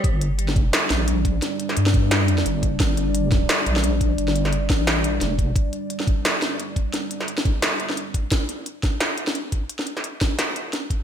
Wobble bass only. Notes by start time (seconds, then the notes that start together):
0.04 G1
0.52 F#1
0.90 A#1
1.77 G2
2.25 F#2
2.46 G1
2.80 G1
3.66 A#1
4.18 G1
4.70 A1
5.21 F1